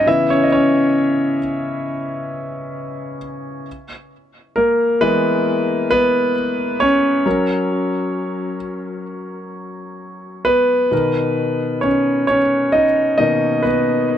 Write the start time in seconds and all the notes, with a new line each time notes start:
0.06 C#3 E3 B3 E4 E5
0.30 C#4 C#5
0.43 D#5
0.52 C#4 C#5
4.56 A#3 A#4
5.01 E3 G#3 B3 B4
5.91 B3 B4
6.80 C#4 C#5
7.26 F#3 C#4 A#4
10.45 B3 B4
10.91 B2 D#3 A#4
11.81 C#4 C#5
12.27 C#4 C#5
12.72 D#4 D#5
13.18 B2 D#3 A#3 D#4 D#5
13.63 B3 B4